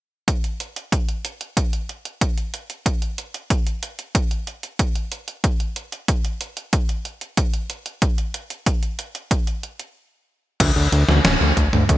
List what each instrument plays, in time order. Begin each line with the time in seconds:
0.28 kick, closed hi-hat
0.44 closed hi-hat
0.60 closed hi-hat
0.76 closed hi-hat
0.92 kick, closed hi-hat
1.09 closed hi-hat
1.25 closed hi-hat
1.41 closed hi-hat
1.57 kick, closed hi-hat
1.73 closed hi-hat
1.89 closed hi-hat
2.05 closed hi-hat
2.21 kick, closed hi-hat
2.38 closed hi-hat
2.54 closed hi-hat
2.70 closed hi-hat
2.86 kick, closed hi-hat
3.02 closed hi-hat
3.18 closed hi-hat
3.34 closed hi-hat
3.50 kick, closed hi-hat
3.67 closed hi-hat
3.83 closed hi-hat
3.99 closed hi-hat
4.15 kick, closed hi-hat
4.31 closed hi-hat
4.47 closed hi-hat
4.63 closed hi-hat
4.79 kick, closed hi-hat
4.95 closed hi-hat
5.12 closed hi-hat
5.28 closed hi-hat
5.44 kick, closed hi-hat
5.60 closed hi-hat
5.76 closed hi-hat
5.92 closed hi-hat
6.08 kick, closed hi-hat
6.25 closed hi-hat
6.41 closed hi-hat
6.57 closed hi-hat
6.73 kick, closed hi-hat
6.89 closed hi-hat
7.05 closed hi-hat
7.21 closed hi-hat
7.37 kick, closed hi-hat
7.54 closed hi-hat
7.70 closed hi-hat
7.86 closed hi-hat
8.02 kick, closed hi-hat
8.18 closed hi-hat
8.34 closed hi-hat
8.50 closed hi-hat
8.66 kick, closed hi-hat
8.83 closed hi-hat
8.99 closed hi-hat
9.15 closed hi-hat
9.31 kick, closed hi-hat
9.47 closed hi-hat
9.63 closed hi-hat
9.80 closed hi-hat
10.60 analog synth bass D2, kick, closed hi-hat, crash
10.76 analog synth bass D2
10.92 analog synth bass D2, closed hi-hat
11.09 analog synth bass D2, snare
11.25 analog synth bass D1, snare, closed hi-hat
11.41 analog synth bass D2
11.57 analog synth bass D2, kick, closed hi-hat
11.73 analog synth bass D2, mid tom
11.89 analog synth bass D2, kick, closed hi-hat